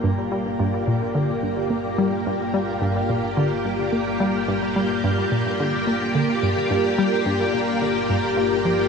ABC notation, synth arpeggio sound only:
X:1
M:4/4
L:1/8
Q:1/4=108
K:Gm
V:1 name="Synth arpeggio sound" clef=bass
G,, G, G,, B,, D, G,, B, G, | G,, G, G,, B,, D, G,, B, G, | G,, G, G,, B,, D, B, D, G,, | G,, G, G,, B,, D, G,, B, F, |]